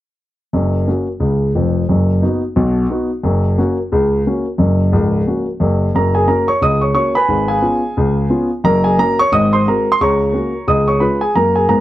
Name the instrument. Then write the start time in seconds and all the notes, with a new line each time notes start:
grand piano
0.53 F#1 F#2
0.88 A#3 C#4 F#4
1.20 C#2 C#3
1.55 F1 F2
1.89 F#1 F#2
2.22 B3 D#4 F#4
2.56 B1 B2
2.90 B3 D#4 F#4
3.23 F#1 F#2
3.58 A#3 C#4 F#4
3.92 C#2 C#3
4.27 A#3 C#4 F#4
4.58 F#1 F#2
4.92 C#1 C#2
5.27 A#3 C#4 F#4
5.60 F#1 F#2
5.95 F#1 F#2 A#4 A#5
6.15 G#4 G#5
6.27 A#3 C#4 F#4 A#4 A#5
6.48 C#5 C#6
6.61 C#2 C#3 D#5 D#6
6.81 C#5 C#6
6.94 A#3 C#4 F#4 C#5 C#6
7.15 B4 G#5 B5
7.29 G#1 G#2
7.48 G#4 F5 G#5
7.62 B3 C#4 F4
7.97 C#2 C#3
8.29 B3 C#4 F4
8.64 F#1 F#2 A#4 A#5
8.84 G#4 G#5
8.98 A#3 C#4 F#4 A#4 A#5
9.19 C#5 C#6
9.32 G#1 G#2 D#5 D#6
9.53 C5 C6
9.67 G#3 C4 F#4 A#4 A#5
9.92 C6
10.01 C#2 C#3 C#5 A#5 C#6
10.33 A#3 C#4 F#4
10.67 C#2 C#3 D#5 D#6
10.88 C#5 C#6
11.00 G#3 C#4 F4 B4 B5
11.21 G#4 G#5
11.35 F#2 A#3 A#4 A#5
11.56 G#4 G#5
11.68 G#2 B3 A#4 A#5